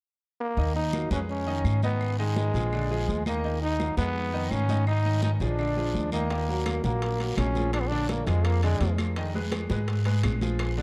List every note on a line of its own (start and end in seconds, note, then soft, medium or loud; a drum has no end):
0.40 0.73 A#3 medium
0.57 1.07 D#2 medium
0.57 0.87 D#3 medium
0.57 0.87 D#4 medium
0.57 0.87 D#5 medium
0.57 high conga soft
0.57 long guiro medium
0.75 1.09 D#4 medium
0.75 high conga soft
0.93 1.08 F#3 medium
0.93 1.08 F#4 medium
0.93 1.09 A#4 medium
0.93 high conga medium
0.93 short guiro medium
0.93 claves medium
1.11 1.61 F2 medium
1.11 1.41 G#3 medium
1.11 1.20 C#4 medium
1.11 1.41 G#4 medium
1.11 1.41 B4 medium
1.11 high conga medium
1.11 short guiro medium
1.29 1.80 C#4 medium
1.29 high conga soft
1.29 long guiro medium
1.47 1.76 D#3 medium
1.47 1.76 D#4 medium
1.47 1.77 D#5 medium
1.47 high conga soft
1.64 2.48 G#2 medium
1.64 high conga medium
1.64 short guiro medium
1.64 claves medium
1.83 2.12 D#3 medium
1.83 2.17 B3 medium
1.83 2.13 D#4 medium
1.83 2.13 D#5 medium
1.83 high conga medium
1.83 short guiro medium
2.01 high conga soft
2.01 long guiro medium
2.01 claves medium
2.19 2.48 D#3 medium
2.19 3.23 G#3 medium
2.19 2.48 D#4 medium
2.19 2.48 D#5 medium
2.19 high conga soft
2.36 high conga medium
2.36 short guiro medium
2.54 3.04 A#1 medium
2.54 2.69 F3 medium
2.54 2.69 F4 medium
2.54 2.70 G#4 medium
2.54 short guiro medium
2.72 2.88 D3 medium
2.72 2.87 D4 medium
2.72 2.88 D5 medium
2.72 high conga soft
2.72 long guiro medium
2.72 claves medium
2.90 3.20 F3 medium
2.90 3.20 F4 medium
2.90 3.20 G#4 medium
2.90 high conga soft
3.08 3.92 D#2 medium
3.08 high conga medium
3.08 short guiro medium
3.26 3.41 D#3 medium
3.26 3.60 A#3 medium
3.26 3.41 D#4 medium
3.26 3.41 D#5 medium
3.26 high conga medium
3.26 short guiro medium
3.26 claves medium
3.44 3.74 D#3 medium
3.44 3.74 D#4 medium
3.44 3.74 D#5 medium
3.44 high conga soft
3.44 long guiro medium
3.62 3.95 D#4 medium
3.62 high conga soft
3.80 3.95 F#3 medium
3.80 3.95 F#4 medium
3.80 3.95 A#4 medium
3.80 high conga medium
3.80 short guiro medium
3.80 claves medium
3.97 4.47 F2 medium
3.97 4.27 G#3 medium
3.97 4.53 B3 loud
3.97 4.28 G#4 medium
3.97 4.28 B4 medium
3.97 high conga loud
3.97 short guiro medium
4.16 high conga soft
4.16 long guiro medium
4.33 4.63 D#3 medium
4.33 4.63 D#4 medium
4.33 4.63 D#5 medium
4.33 high conga soft
4.51 5.35 G#2 medium
4.51 4.87 C#4 medium
4.51 high conga medium
4.51 short guiro medium
4.51 claves medium
4.69 4.99 D#3 medium
4.69 4.99 D#4 medium
4.69 4.99 D#5 medium
4.69 high conga medium
4.69 short guiro medium
4.87 5.21 D#4 loud
4.87 high conga soft
4.87 long guiro medium
4.87 claves medium
5.05 5.35 D#3 medium
5.05 5.35 D#4 medium
5.05 5.35 D#5 medium
5.05 high conga soft
5.22 5.31 D#4 medium
5.22 high conga medium
5.22 short guiro medium
5.40 5.90 A#1 medium
5.40 5.56 F3 medium
5.40 6.08 D4 medium
5.40 5.56 F4 medium
5.40 5.56 G#4 medium
5.40 high conga soft
5.40 short guiro medium
5.58 5.73 D3 medium
5.58 5.74 D4 medium
5.58 5.74 D5 medium
5.58 high conga soft
5.58 long guiro medium
5.58 claves medium
5.76 6.06 F3 medium
5.76 6.06 F4 medium
5.76 6.06 G#4 medium
5.76 high conga soft
5.94 6.78 D#2 medium
5.94 high conga medium
5.94 short guiro medium
6.12 6.27 D#3 medium
6.12 6.80 A#3 medium
6.12 6.27 D#4 medium
6.12 6.28 D#5 medium
6.12 high conga medium
6.12 short guiro medium
6.12 claves medium
6.30 6.45 D#3 medium
6.30 6.46 D#4 medium
6.30 6.46 D#5 medium
6.30 high bongo medium
6.30 high conga soft
6.30 high timbale medium
6.30 long guiro medium
6.48 6.78 F#3 medium
6.48 6.78 F#4 medium
6.48 6.78 A#4 medium
6.48 high bongo soft
6.48 high conga soft
6.66 high bongo medium
6.66 high conga medium
6.66 high timbale medium
6.66 low timbale medium
6.66 short guiro medium
6.66 claves medium
6.84 7.34 A#1 medium
6.84 7.14 F#3 medium
6.84 7.34 A#3 medium
6.84 7.14 F#4 medium
6.84 7.14 A#4 medium
6.84 high bongo soft
6.84 high conga medium
6.84 short guiro medium
7.02 high bongo medium
7.02 high conga soft
7.02 high timbale medium
7.02 long guiro medium
7.20 7.49 F#3 medium
7.20 7.49 F#4 medium
7.20 7.49 A#4 medium
7.20 high conga soft
7.20 high timbale medium
7.37 8.21 A#1 medium
7.37 7.71 C#4 medium
7.37 high bongo soft
7.37 low bongo medium
7.37 high conga medium
7.37 high timbale medium
7.37 low timbale medium
7.37 short guiro medium
7.37 claves medium
7.55 7.85 F3 medium
7.55 7.85 F4 medium
7.55 7.85 G#4 medium
7.55 high bongo soft
7.55 high conga medium
7.55 short guiro medium
7.73 7.82 D4 loud
7.73 high bongo medium
7.73 high conga soft
7.73 high timbale medium
7.73 long guiro medium
7.73 claves medium
7.81 7.90 B3 medium
7.88 8.21 D3 medium
7.88 8.09 D4 loud
7.88 8.21 D4 medium
7.88 8.21 D5 medium
7.88 high bongo soft
7.88 high conga soft
8.09 8.29 A#3 medium
8.09 high bongo medium
8.09 high conga medium
8.09 high timbale medium
8.09 low timbale medium
8.09 short guiro medium
8.27 8.77 F2 loud
8.27 8.56 F3 medium
8.27 8.47 G#3 medium
8.27 8.56 F4 medium
8.27 8.57 G#4 medium
8.27 high bongo soft
8.27 high timbale medium
8.27 short guiro medium
8.45 8.63 A#3 medium
8.45 high bongo medium
8.45 high conga soft
8.45 high timbale medium
8.45 long guiro medium
8.45 claves medium
8.63 8.78 D3 medium
8.63 8.96 G#3 medium
8.63 8.78 D4 medium
8.63 8.78 D5 medium
8.63 high conga soft
8.63 high timbale medium
8.80 9.64 F2 medium
8.80 9.10 F3 medium
8.80 9.10 F4 medium
8.80 9.11 G#4 medium
8.80 high bongo soft
8.80 low bongo medium
8.80 high conga medium
8.80 high timbale medium
8.80 low timbale medium
8.80 short guiro medium
8.98 high bongo soft
8.98 high conga medium
8.98 high timbale medium
8.98 short guiro medium
8.98 claves medium
9.16 9.31 D#3 medium
9.16 9.31 D#4 medium
9.16 9.32 D#5 medium
9.16 high bongo medium
9.16 high timbale medium
9.16 long guiro medium
9.34 9.64 G#3 medium
9.34 9.64 G#4 medium
9.34 9.64 B4 medium
9.34 high bongo soft
9.34 high conga soft
9.52 high bongo medium
9.52 high conga medium
9.52 high timbale medium
9.52 low timbale medium
9.52 short guiro medium
9.52 claves medium
9.70 10.20 G#2 medium
9.70 9.99 G#3 medium
9.70 10.00 G#4 medium
9.70 10.00 B4 medium
9.70 high bongo soft
9.70 high conga medium
9.70 short guiro medium
9.88 high bongo medium
9.88 high conga soft
9.88 high timbale medium
9.88 long guiro medium
10.05 10.35 G#3 medium
10.05 10.35 G#4 medium
10.05 10.35 B4 medium
10.05 high conga soft
10.05 high timbale medium
10.23 10.82 A#1 medium
10.23 high bongo soft
10.23 low bongo medium
10.23 high conga medium
10.23 high timbale medium
10.23 low timbale medium
10.23 short guiro medium
10.23 claves medium
10.41 10.71 F3 medium
10.41 10.71 F4 medium
10.41 10.71 G#4 medium
10.41 high bongo soft
10.41 high conga medium
10.41 short guiro medium
10.59 high bongo medium
10.59 high conga soft
10.59 high timbale medium
10.59 long guiro medium
10.59 claves medium
10.77 10.82 D3 medium
10.77 10.82 D4 medium
10.77 10.82 D5 medium
10.77 high bongo soft
10.77 high conga soft